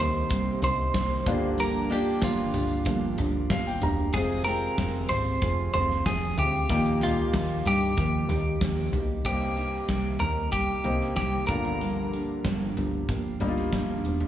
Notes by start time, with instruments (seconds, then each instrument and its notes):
Already playing: grand piano G2 A#3 C4 D#4 G4 A#4
0.00 picked electric bass D#2, steel-string acoustic guitar A#3 D#4 G4, clean electric guitar C5
0.30 picked electric bass C2, steel-string acoustic guitar C3 G3 A#3 D#4 G4, kick, hi-hat pedal, open hi-hat
0.62 picked electric bass C2, steel-string acoustic guitar A#3 D#4 G4, clean electric guitar C5, floor tom, hi-hat pedal, open hi-hat
0.94 picked electric bass C2, steel-string acoustic guitar G3 A#3 D#4 G4, kick, snare, hi-hat pedal, open hi-hat
1.26 picked electric bass G1, grand piano G2 D3 A#3 D4 F4 G4, steel-string acoustic guitar F3 A#3 D4 G4, kick, floor tom, hi-hat pedal, open hi-hat
1.57 steel-string acoustic guitar G2 D3 F3 A#3 D4 G4, clean electric guitar A#4, hi-hat pedal, open hi-hat
1.90 steel-string acoustic guitar F3 A#3 D4 G4, grand piano A#3 D4 F4 G4, clean electric guitar G4, hi-hat pedal, open hi-hat
2.21 picked electric bass G1, steel-string acoustic guitar F3 A#3 D4 G4, clean electric guitar F4, kick, snare, hi-hat pedal, open hi-hat
2.54 picked electric bass G1, steel-string acoustic guitar F3 A#3 D4 G4, floor tom, hi-hat pedal, open hi-hat
2.85 picked electric bass G1, steel-string acoustic guitar G2 D3 F3 A#3 D4 G4, kick, hi-hat pedal, open hi-hat
3.17 picked electric bass G1, steel-string acoustic guitar F3 A#3 D4 G4, floor tom, hi-hat pedal, open hi-hat
3.49 picked electric bass G1, steel-string acoustic guitar F3 A#3 D4 G4, grand piano F5, kick, snare, hi-hat pedal, open hi-hat
3.67 grand piano G5
3.81 picked electric bass E1, steel-string acoustic guitar F3 A#3 D4 G4, grand piano A#5, floor tom, hi-hat pedal, open hi-hat
4.13 picked electric bass F1, grand piano C3 G#3 C4 F4 G#4, steel-string acoustic guitar F3 C4 F4 G#4, clean electric guitar G#4, kick, hi-hat pedal, open hi-hat
4.44 grand piano G#3 C4 F4 G5, steel-string acoustic guitar C4 F4 G#4, clean electric guitar A#4, hi-hat pedal, open hi-hat
4.77 picked electric bass F1, steel-string acoustic guitar F3 C4 F4 G#4, kick, snare, hi-hat pedal, open hi-hat
5.09 picked electric bass G#1, steel-string acoustic guitar C4 F4 G#4, clean electric guitar C5, floor tom, hi-hat pedal, open hi-hat
5.41 picked electric bass F1, steel-string acoustic guitar F3 C4 F4 G#4, kick, hi-hat pedal, open hi-hat
5.73 picked electric bass F1, steel-string acoustic guitar C4 F4 G#4, clean electric guitar C5, floor tom, hi-hat pedal, open hi-hat
5.90 snare
6.06 picked electric bass F1, steel-string acoustic guitar F3 C4 F4 G#4, clean electric guitar G#4, kick, snare, hi-hat pedal, open hi-hat
6.37 picked electric bass D2, steel-string acoustic guitar C4 F4 G#4, clean electric guitar G4, floor tom, hi-hat pedal, open hi-hat
6.54 open hi-hat
6.69 picked electric bass D#2, grand piano A#2 A#3 D#4 F4 G4, steel-string acoustic guitar D#3 F3 A#3 D#4 G4, kick, hi-hat pedal, open hi-hat
6.85 hi-hat pedal
7.01 grand piano A#3 D#4 F4 G4, steel-string acoustic guitar A#3 D#4 G4, clean electric guitar F4, floor tom, hi-hat pedal, open hi-hat
7.33 picked electric bass D#2, steel-string acoustic guitar F3 A#3 D#4 G4, kick, snare, hi-hat pedal, open hi-hat
7.65 picked electric bass G2, steel-string acoustic guitar A#3 D#4 G4, clean electric guitar G4, floor tom, hi-hat pedal, open hi-hat
7.97 picked electric bass D#2, steel-string acoustic guitar D#3 F3 A#3 D#4 G4, kick, hi-hat pedal, open hi-hat
8.29 picked electric bass D#2, steel-string acoustic guitar D#4 G4, floor tom, hi-hat pedal, open hi-hat
8.33 steel-string acoustic guitar A#3
8.61 picked electric bass D#2, steel-string acoustic guitar F3 A#3 D#4 G4, kick, snare, hi-hat pedal, open hi-hat
8.92 picked electric bass B1, steel-string acoustic guitar A#3 D#4 G4, floor tom, hi-hat pedal, open hi-hat
9.25 picked electric bass C2, grand piano G2 A#3 C4 D4, steel-string acoustic guitar C3 G3 A#3 D#4 G4, clean electric guitar G4, kick, crash
9.33 grand piano D#4
9.57 steel-string acoustic guitar A#3 D#4 G4, closed hi-hat
9.88 picked electric bass C2, steel-string acoustic guitar C3 G3 A#3 D#4 G4, kick, snare, closed hi-hat
10.20 picked electric bass D#2, steel-string acoustic guitar A#3 D#4 G4, clean electric guitar A#4, closed hi-hat, floor tom
10.52 picked electric bass C2, steel-string acoustic guitar G3 A#3 D#4 G4, clean electric guitar G4, kick, closed hi-hat
10.84 picked electric bass C2, grand piano A#3 C4 D#4, steel-string acoustic guitar A#3 D#4 G4, closed hi-hat, floor tom
11.01 snare
11.16 picked electric bass C2, steel-string acoustic guitar C3 G3 A#3 D#4 G4, clean electric guitar G4, kick, snare, closed hi-hat
11.47 picked electric bass G1, grand piano G2 D3 G3 A#3 F4, steel-string acoustic guitar F3 A#3 D4 G4, clean electric guitar A#4, kick, closed hi-hat, floor tom
11.65 floor tom
11.81 steel-string acoustic guitar G2 D3 F3 A#3 D4 G4, closed hi-hat
12.12 steel-string acoustic guitar F3 A#3 D4 G4, closed hi-hat
12.44 picked electric bass G1, steel-string acoustic guitar G2 D3 F3 A#3 D4 G4, kick, snare, closed hi-hat
12.76 picked electric bass G1, steel-string acoustic guitar F3 A#3 D4 G4, closed hi-hat, floor tom
13.08 picked electric bass G1, steel-string acoustic guitar F3 A#3 D4 G4, kick, closed hi-hat
13.40 picked electric bass G1, steel-string acoustic guitar F3 A#3 D4 G4, grand piano G3 A#3 D#4, closed hi-hat, floor tom
13.49 grand piano F4
13.56 snare
13.72 picked electric bass G1, steel-string acoustic guitar G2 D3 F3 A#3 D4 G4, kick, snare, closed hi-hat
14.04 picked electric bass E1, steel-string acoustic guitar F3 A#3 D4 G4, closed hi-hat
14.20 floor tom